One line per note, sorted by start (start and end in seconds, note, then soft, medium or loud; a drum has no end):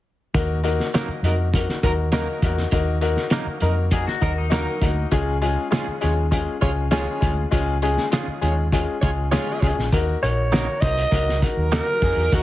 0.34 0.78 D#2 loud
0.34 0.57 A#3 loud
0.34 0.57 D#4 medium
0.34 0.57 F#4 medium
0.34 0.57 A#4 loud
0.34 kick loud
0.34 closed hi-hat medium
0.64 0.87 A#3 loud
0.64 0.87 D#4 medium
0.64 0.87 F#4 medium
0.64 0.87 A#4 loud
0.64 closed hi-hat medium
0.80 snare soft
0.94 1.08 F#3 medium
0.94 1.17 A#3 medium
0.94 1.08 A#3 medium
0.94 1.17 D#4 medium
0.94 1.08 D#4 medium
0.94 1.17 F#4 medium
0.94 1.17 A#4 medium
0.94 1.08 A#4 medium
0.94 snare loud
0.94 closed hi-hat medium
1.08 muted fingered electric bass stroke soft
1.23 1.66 F2 medium
1.23 1.37 F#3 medium
1.23 1.47 A#3 medium
1.23 1.37 D#4 medium
1.23 1.47 D#4 medium
1.23 1.47 F#4 medium
1.23 1.37 A#4 medium
1.23 1.47 A#4 medium
1.23 closed hi-hat medium
1.54 1.77 A#3 medium
1.54 1.77 D#4 medium
1.54 1.77 F#4 medium
1.54 1.77 A#4 medium
1.54 kick medium
1.54 closed hi-hat medium
1.69 snare soft
1.83 2.26 D#2 medium
1.83 1.93 F#3 medium
1.83 2.06 A#3 medium
1.83 1.93 D#4 medium
1.83 2.06 D#4 medium
1.83 2.06 F#4 medium
1.83 1.93 A#4 loud
1.83 2.06 A#4 medium
1.83 kick medium
1.83 closed hi-hat medium
2.12 2.55 F#3 medium
2.12 2.27 F#3 medium
2.12 2.36 A#3 medium
2.12 2.27 A#3 medium
2.12 2.55 D#4 medium
2.12 2.36 D#4 medium
2.12 2.27 D#4 medium
2.12 2.36 F#4 medium
2.12 2.36 A#4 loud
2.12 2.55 A#4 medium
2.12 2.27 A#4 medium
2.12 snare loud
2.12 closed hi-hat medium
2.42 2.64 E2 medium
2.42 2.66 A#3 medium
2.42 2.66 D#4 medium
2.42 2.67 F#4 medium
2.42 2.67 A#4 medium
2.42 kick medium
2.42 closed hi-hat medium
2.58 snare soft
2.71 3.15 D#2 loud
2.71 2.96 A#3 loud
2.71 2.96 D#4 medium
2.71 2.96 F#4 medium
2.71 2.96 A#4 loud
2.71 kick loud
2.71 closed hi-hat medium
3.01 3.25 A#3 loud
3.01 3.25 D#4 medium
3.01 3.25 F#4 loud
3.01 3.25 A#4 loud
3.01 closed hi-hat medium
3.17 snare soft
3.30 3.46 F#3 medium
3.30 3.55 A#3 medium
3.30 3.46 A#3 medium
3.30 3.55 D#4 medium
3.30 3.47 D#4 medium
3.30 3.55 F#4 medium
3.30 3.55 A#4 medium
3.30 3.47 A#4 medium
3.30 snare loud
3.30 closed hi-hat medium
3.46 muted fingered electric bass stroke soft
3.60 4.05 F2 medium
3.60 3.75 F#3 medium
3.60 3.85 A#3 medium
3.60 3.85 D#4 medium
3.60 3.75 D#4 medium
3.60 3.85 F#4 medium
3.60 3.85 A#4 medium
3.60 3.75 A#4 medium
3.60 closed hi-hat medium
3.91 4.15 A#3 medium
3.91 4.15 D#4 medium
3.91 4.15 F#4 medium
3.91 4.06 G#4 medium
3.91 4.15 A#4 medium
3.91 kick medium
3.91 closed hi-hat medium
4.07 4.36 F#4 medium
4.07 snare soft
4.21 4.65 D#2 medium
4.21 4.32 F#3 medium
4.21 4.45 A#3 medium
4.21 4.45 D#4 medium
4.21 4.32 D#4 medium
4.21 4.45 F#4 medium
4.21 4.45 A#4 medium
4.21 4.32 A#4 medium
4.21 kick medium
4.21 closed hi-hat medium
4.38 5.09 D#4 medium
4.50 4.66 F#3 medium
4.50 4.95 F#3 medium
4.50 4.74 A#3 loud
4.50 4.66 A#3 medium
4.50 4.74 D#4 medium
4.50 4.95 D#4 medium
4.50 4.66 D#4 medium
4.50 4.75 F#4 medium
4.50 4.74 A#4 loud
4.50 4.95 A#4 loud
4.50 4.66 A#4 medium
4.50 snare loud
4.50 closed hi-hat medium
4.81 5.04 D2 medium
4.81 5.05 A#3 medium
4.81 5.05 D#4 medium
4.81 5.05 F#4 medium
4.81 5.05 A#4 medium
4.81 kick medium
4.81 closed hi-hat medium
5.11 5.55 C#2 loud
5.11 5.35 G#3 loud
5.11 5.35 C#4 medium
5.11 5.35 F4 loud
5.11 5.35 G#4 loud
5.11 kick medium
5.11 closed hi-hat medium
5.42 5.65 G#3 medium
5.42 5.65 C#4 medium
5.42 5.65 F4 medium
5.42 5.65 G#4 loud
5.42 closed hi-hat medium
5.70 5.94 G#3 medium
5.70 5.86 G#3 medium
5.70 5.95 C#4 medium
5.70 5.86 C#4 medium
5.70 5.94 F4 medium
5.70 5.86 F4 medium
5.70 5.94 G#4 medium
5.70 5.86 G#4 medium
5.70 snare medium
5.70 closed hi-hat medium
5.87 muted fingered electric bass stroke soft
6.01 6.46 D#2 medium
6.01 6.24 G#3 medium
6.01 6.15 G#3 medium
6.01 6.25 C#4 medium
6.01 6.25 F4 medium
6.01 6.15 F4 medium
6.01 6.25 G#4 medium
6.01 6.15 C#5 medium
6.01 closed hi-hat medium
6.31 6.55 G#3 medium
6.31 6.55 C#4 medium
6.31 6.55 F4 medium
6.31 6.55 G#4 medium
6.31 kick medium
6.31 closed hi-hat medium
6.61 7.05 C#2 medium
6.61 6.84 G#3 medium
6.61 6.71 G#3 medium
6.61 6.85 C#4 medium
6.61 6.85 F4 medium
6.61 6.71 F4 medium
6.61 6.85 G#4 medium
6.61 6.71 C#5 medium
6.61 kick medium
6.61 closed hi-hat medium
6.91 7.14 G#3 loud
6.91 7.35 G#3 medium
6.91 7.06 G#3 medium
6.91 7.15 C#4 medium
6.91 7.06 C#4 medium
6.91 7.34 F4 medium
6.91 7.15 F4 medium
6.91 7.06 F4 medium
6.91 7.15 G#4 loud
6.91 7.07 G#4 medium
6.91 7.35 C#5 loud
6.91 snare loud
6.91 closed hi-hat medium
7.20 7.44 D2 medium
7.20 7.44 G#3 medium
7.20 7.44 C#4 medium
7.20 7.44 F4 medium
7.20 7.45 G#4 medium
7.20 kick medium
7.20 closed hi-hat medium
7.51 7.95 C#2 medium
7.51 7.75 G#3 loud
7.51 7.75 C#4 loud
7.51 7.75 F4 medium
7.51 7.75 G#4 loud
7.51 kick loud
7.51 closed hi-hat medium
7.82 8.05 G#3 medium
7.82 8.05 C#4 medium
7.82 8.05 F4 medium
7.82 8.06 G#4 loud
7.82 closed hi-hat medium
7.98 snare soft
8.11 8.35 G#3 medium
8.11 8.27 G#3 medium
8.11 8.35 C#4 medium
8.11 8.27 C#4 medium
8.11 8.35 F4 medium
8.11 8.27 F4 medium
8.11 8.35 G#4 medium
8.11 8.27 G#4 medium
8.11 snare loud
8.11 closed hi-hat medium
8.27 muted fingered electric bass stroke soft
8.41 8.86 D#2 medium
8.41 8.65 G#3 medium
8.41 8.55 G#3 medium
8.41 8.65 C#4 medium
8.41 8.65 F4 medium
8.41 8.55 F4 medium
8.41 8.65 G#4 medium
8.41 8.55 C#5 medium
8.41 closed hi-hat medium
8.72 8.95 G#3 medium
8.72 8.95 C#4 medium
8.72 8.95 F4 medium
8.72 8.96 G#4 medium
8.72 kick medium
8.72 closed hi-hat medium
9.02 9.35 C#2 medium
9.02 9.11 G#3 medium
9.02 9.26 G#3 medium
9.02 9.26 C#4 medium
9.02 9.12 F4 medium
9.02 9.26 F4 medium
9.02 9.26 G#4 medium
9.02 9.11 C#5 medium
9.02 kick medium
9.02 closed hi-hat medium
9.32 9.75 G#3 medium
9.32 9.55 G#3 loud
9.32 9.46 G#3 medium
9.32 9.55 C#4 medium
9.32 9.46 C#4 medium
9.32 9.75 F4 medium
9.32 9.55 F4 loud
9.32 9.47 F4 medium
9.32 9.55 G#4 loud
9.32 9.47 G#4 medium
9.32 9.75 C#5 loud
9.32 snare loud
9.32 closed hi-hat medium
9.62 9.73 C#2 medium
9.62 9.85 G#3 medium
9.62 9.86 C#4 medium
9.62 9.85 F4 medium
9.62 9.86 G#4 medium
9.62 kick medium
9.62 closed hi-hat medium
9.78 9.89 A#1 medium
9.78 snare soft
9.92 10.14 D#2 medium
9.92 10.15 A#3 medium
9.92 10.16 D#4 medium
9.92 10.16 F#4 loud
9.92 10.16 A#4 loud
9.92 kick loud
9.92 closed hi-hat medium
10.21 10.66 A#1 medium
10.21 10.45 A#3 medium
10.21 10.45 D#4 medium
10.21 10.45 F#4 medium
10.21 10.45 A#4 medium
10.21 10.82 C#5 medium
10.21 closed hi-hat medium
10.50 10.75 A#3 medium
10.50 10.66 A#3 medium
10.50 10.75 D#4 medium
10.50 10.66 D#4 medium
10.50 10.75 F#4 medium
10.50 10.67 F#4 medium
10.50 10.75 A#4 medium
10.50 10.67 A#4 medium
10.50 snare loud
10.50 closed hi-hat medium
10.81 11.04 C2 medium
10.81 11.05 A#3 medium
10.81 11.05 D#4 medium
10.81 11.05 F#4 medium
10.81 11.05 C5 medium
10.81 11.42 D#5 loud
10.81 kick medium
10.81 closed hi-hat medium
10.98 closed hi-hat medium
11.11 11.45 C#2 medium
11.11 12.43 F#3 medium
11.11 11.35 A#3 medium
11.11 11.35 D#4 medium
11.11 12.43 D#4 medium
11.11 11.35 F#4 medium
11.11 11.35 A#4 medium
11.11 12.43 A#4 medium
11.11 kick medium
11.11 closed hi-hat medium
11.29 snare soft
11.42 11.65 A#3 medium
11.42 11.66 D#4 medium
11.42 11.66 F#4 medium
11.42 11.66 A#4 medium
11.42 kick medium
11.42 closed hi-hat medium
11.57 11.79 D#2 medium
11.72 11.86 A#3 medium
11.72 11.96 A#3 medium
11.72 11.86 D#4 medium
11.72 11.96 D#4 medium
11.72 11.87 F#4 medium
11.72 11.96 F#4 medium
11.72 11.96 A#4 medium
11.72 12.36 A#4 loud
11.72 11.87 A#4 medium
11.72 snare medium
11.72 closed hi-hat medium
12.02 12.13 F2 medium
12.02 12.26 A#3 medium
12.02 12.26 D#4 medium
12.02 12.26 F#4 medium
12.02 12.26 G#4 medium
12.02 kick loud
12.02 open hi-hat medium
12.17 12.28 E2 medium
12.32 12.43 D#2 medium
12.32 12.43 A#3 medium
12.32 12.43 D#4 medium
12.32 12.43 F#4 medium
12.32 12.43 A#4 loud
12.32 kick medium
12.32 closed hi-hat medium